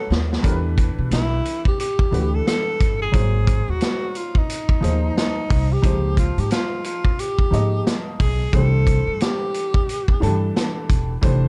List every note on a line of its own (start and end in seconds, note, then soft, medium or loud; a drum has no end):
0.00 0.31 A3 medium
0.00 0.32 C#4 medium
0.00 0.32 D#4 medium
0.00 0.33 F#4 medium
0.00 0.11 A4 medium
0.00 0.33 B4 medium
0.10 0.37 D#2 medium
0.10 snare loud
0.33 snare medium
0.43 0.88 E2 loud
0.43 1.61 E3 medium
0.43 1.61 A3 medium
0.43 1.62 D4 medium
0.43 1.62 G4 medium
0.43 0.53 A#4 medium
0.43 kick loud
0.43 closed hi-hat medium
0.52 1.66 B4 medium
0.78 kick medium
0.78 closed hi-hat medium
0.98 1.09 B2 medium
1.11 1.38 B1 medium
1.11 1.63 E4 loud
1.11 snare loud
1.11 closed hi-hat medium
1.45 closed hi-hat medium
1.65 1.79 G4 medium
1.65 kick medium
1.79 2.37 G4 loud
1.79 closed hi-hat medium
1.99 kick loud
2.11 2.39 D2 loud
2.11 3.01 E3 medium
2.11 3.01 A3 medium
2.11 3.02 D4 medium
2.11 2.21 F#4 medium
2.11 3.03 B4 medium
2.11 closed hi-hat medium
2.20 3.06 G4 medium
2.35 2.47 A4 medium
2.47 2.98 A4 loud
2.47 snare loud
2.47 closed hi-hat medium
2.81 3.07 G1 medium
2.81 kick loud
2.81 closed hi-hat medium
3.02 3.72 G#4 loud
3.12 3.57 G#1 loud
3.12 4.30 F#3 medium
3.12 4.31 A#3 medium
3.12 4.31 D#4 medium
3.12 4.32 G#4 medium
3.12 4.32 C5 medium
3.12 kick loud
3.12 closed hi-hat medium
3.47 kick loud
3.47 closed hi-hat medium
3.68 3.79 D#2 medium
3.68 4.18 F#4 medium
3.81 snare loud
3.81 closed hi-hat medium
4.15 4.39 F4 medium
4.15 closed hi-hat medium
4.35 5.17 D#4 medium
4.35 kick medium
4.49 closed hi-hat medium
4.69 kick medium
4.81 5.09 D#2 medium
4.81 5.71 F3 medium
4.81 5.71 A#3 medium
4.81 5.72 D#4 medium
4.81 5.72 G#4 medium
4.81 5.72 C5 medium
4.81 closed hi-hat medium
5.17 5.74 D#4 loud
5.17 snare loud
5.17 closed hi-hat medium
5.50 5.77 C2 medium
5.50 kick loud
5.50 open hi-hat medium
5.73 6.18 G4 loud
5.82 6.27 C#2 loud
5.82 7.00 F3 medium
5.82 7.02 G#3 medium
5.82 7.01 A#3 medium
5.82 7.01 D#4 medium
5.82 7.02 C5 medium
5.82 kick loud
5.82 closed hi-hat medium
6.17 6.42 F4 medium
6.17 kick medium
6.17 closed hi-hat medium
6.38 6.48 G#2 medium
6.38 6.52 G4 medium
6.38 closed hi-hat soft
6.51 6.83 F4 loud
6.51 snare loud
6.51 closed hi-hat medium
6.84 7.22 F4 medium
6.84 closed hi-hat medium
7.05 kick medium
7.19 7.95 G4 loud
7.19 closed hi-hat medium
7.39 kick medium
7.51 7.79 G#2 medium
7.51 8.41 F3 medium
7.51 8.42 G#3 medium
7.51 8.41 A#3 medium
7.51 8.41 D#4 medium
7.51 8.42 D#5 medium
7.51 closed hi-hat medium
7.87 snare loud
7.87 closed hi-hat medium
8.20 8.47 B1 medium
8.20 8.52 G#4 medium
8.20 kick loud
8.20 open hi-hat medium
8.52 8.97 C2 loud
8.52 9.70 E3 medium
8.52 9.71 A3 medium
8.52 9.71 D4 medium
8.52 9.71 G4 medium
8.52 9.24 A4 loud
8.52 9.72 C5 medium
8.52 kick loud
8.52 closed hi-hat medium
8.87 kick medium
8.87 closed hi-hat medium
9.07 9.18 G2 medium
9.20 10.56 G4 medium
9.20 snare loud
9.20 closed hi-hat medium
9.54 closed hi-hat medium
9.74 kick medium
9.89 closed hi-hat medium
10.08 kick medium
10.20 10.49 G2 loud
10.20 10.29 D#3 medium
10.20 11.11 A3 medium
10.20 11.11 D4 medium
10.20 11.11 G4 medium
10.20 11.12 A4 loud
10.20 closed hi-hat medium
10.27 11.13 E3 medium
10.56 snare loud
10.56 closed hi-hat medium
10.90 11.16 E1 medium
10.90 kick medium
10.90 closed hi-hat medium
11.21 11.48 F1 loud
11.21 11.48 E3 medium
11.21 11.48 A3 medium
11.21 11.48 D4 medium
11.21 11.48 G4 medium
11.21 11.48 C5 loud
11.21 kick loud
11.21 closed hi-hat medium